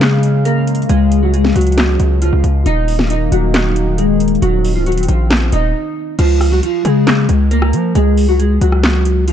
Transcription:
Already playing: 808-style bass C#3, analog synth pad C#3 G#3 F5, clean electric guitar G#3 G#4
0.01 snare, clap, closed hi-hat
0.23 closed hi-hat
0.45 clean electric guitar A#3 A#4, closed hi-hat
0.67 closed hi-hat
0.75 closed hi-hat
0.82 closed hi-hat
0.89 808-style bass C#2, clean electric guitar G#3 G#4, closed hi-hat
1.12 closed hi-hat
1.23 clean electric guitar F#3 F#4
1.33 clean electric guitar G#3 G#4, closed hi-hat
1.45 snare
1.56 808-style bass C#2, clean electric guitar F#3 F#4, closed hi-hat
1.61 closed hi-hat
1.67 closed hi-hat
1.72 closed hi-hat
1.78 snare, clap, closed hi-hat
2.00 808-style bass C#2, closed hi-hat
2.22 clean electric guitar F3 F4, closed hi-hat
2.33 808-style bass C#2
2.44 808-style bass C#2, closed hi-hat
2.66 808-style bass D#1, analog synth pad D#3 A#3 D#4, clean electric guitar D#4 D#5, closed hi-hat
2.88 open hi-hat
2.99 clean electric guitar F3 F4, snare
3.10 clean electric guitar D#4 D#5, closed hi-hat
3.32 808-style bass D#1, clean electric guitar F#3 F#4, closed hi-hat
3.54 snare, clap, closed hi-hat
3.76 closed hi-hat
3.98 clean electric guitar G#3 G#4, closed hi-hat
4.20 closed hi-hat
4.28 closed hi-hat
4.35 closed hi-hat
4.42 808-style bass D#1, clean electric guitar F#3 F#4, analog synth pad C4, closed hi-hat
4.64 open hi-hat
4.75 808-style bass C#1, clean electric guitar F3 F4
4.86 clean electric guitar F#3 F#4, closed hi-hat
4.92 808-style bass D#1, closed hi-hat
4.97 closed hi-hat
5.03 closed hi-hat
5.08 808-style bass A#1, clean electric guitar F3 F4, closed hi-hat
5.31 snare, clap, closed hi-hat
5.52 808-style bass D#1, clean electric guitar D#4 D#5, closed hi-hat
6.19 808-style bass C#2, clean electric guitar F3 F4, closed hi-hat, crash
6.41 cross-stick, open hi-hat
6.52 clean electric guitar F#3 F#4
6.63 clean electric guitar F3 F4, closed hi-hat
6.85 808-style bass C#3, clean electric guitar G#3 G#4, closed hi-hat
7.07 snare, clap, closed hi-hat
7.29 808-style bass C#2, closed hi-hat
7.51 clean electric guitar A#3 A#4, closed hi-hat
7.62 cross-stick
7.73 808-style bass F3, closed hi-hat
7.95 808-style bass C#2, clean electric guitar G#3 G#4, closed hi-hat
8.17 open hi-hat
8.29 clean electric guitar F#3 F#4
8.39 clean electric guitar G#3 G#4, closed hi-hat
8.61 808-style bass C#2, clean electric guitar F#3 F#4, closed hi-hat
8.72 cross-stick
8.83 snare, clap, closed hi-hat
9.05 closed hi-hat
9.28 clean electric guitar F3 F4, closed hi-hat

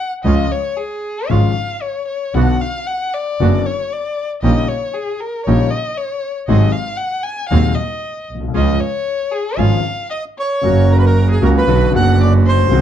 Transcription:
Already playing: violin F#5
0.24 grand piano C#2 C#3 F3 G#3 F4, double bass C#2, bandoneon G#3 C#4 F4, violin D#5
0.52 violin C#5
0.77 violin G#4
1.29 grand piano G#1 G#2 C#3 F3 G#3 F4, double bass G#1, bandoneon G#3 C#4 F4, violin F5
1.82 violin C#5
2.08 violin C#5
2.34 double bass B1, grand piano B1 B2 D3 F#3 B3 F#4, bandoneon B3 D4 F#4, violin F#5
2.61 violin F5
2.87 violin F#5
3.14 violin D5
3.40 double bass F#1, grand piano F#1 F#2 D3 F#3 B3 F#4, bandoneon B3 D4 F#4
3.66 violin C#5
3.92 violin D5
4.42 double bass A#1, grand piano A#1 A#2 C#3 G3 A#3 D#4, bandoneon C#4 D#4 G4, violin D#5
4.68 violin C#5
4.94 violin G#4
5.20 violin A#4
5.45 double bass A#1, grand piano A#1 A#2 C#3 G3 A#3 D#4, bandoneon C#4 D#4 G4, violin C#5
5.71 violin D#5
5.97 violin C#5
6.47 grand piano G#1 G#2 C3 F#3 G#3 D#4, double bass G#1, bandoneon C4 F#4 G#4, violin D#5
6.72 violin F5
6.97 violin F#5
7.23 violin G#5
7.49 grand piano D#1 D#2 C3 F#3 G#3 D#4, double bass D#2, bandoneon C4 F#4 G#4, violin F5
7.75 violin D#5
8.29 double bass B1
8.35 grand piano A#1
8.41 grand piano B1
8.48 grand piano C2
8.54 grand piano C#2 C#3 F3 G#3 F4, double bass C#2, bandoneon C#4 F4 G#4, violin D#5
8.81 violin C#5
9.32 violin G#4
9.57 grand piano G#1 G#2 C#3 F3 G#3 F4, double bass G#1, bandoneon C#4 F4 G#4, violin F5
10.10 violin D#5, bandoneon D#5
10.37 violin C#5, bandoneon C#5
10.61 double bass F#1, grand piano F#2 C#3 F#3 A#3, bandoneon C#4 F#4 A#4
10.66 grand piano F#4
10.90 violin A#4, bandoneon A#4
10.96 violin B4, bandoneon B4
11.04 violin A#4, bandoneon A#4
11.29 violin G#4, bandoneon G#4
11.42 grand piano C#2 C#3 F#3 A#3 F#4, double bass C#2, bandoneon C#4 F#4 A#4, violin A#4
11.56 violin B4, bandoneon B4
11.67 grand piano B1 B2 D3 F#3 B3 F#4, double bass B1, bandoneon D4 F#4 B4
11.92 grand piano F#1 F#2 D3 F#3 B3 F#4, double bass F#1, bandoneon D4 F#4 B4, violin F#5
11.96 bandoneon F#5
12.20 violin D5, bandoneon D5
12.46 violin C5, bandoneon C5
12.69 grand piano C2 C3 D#3 G#3 C4 F#4, double bass C2, bandoneon C4 F#4 G#4

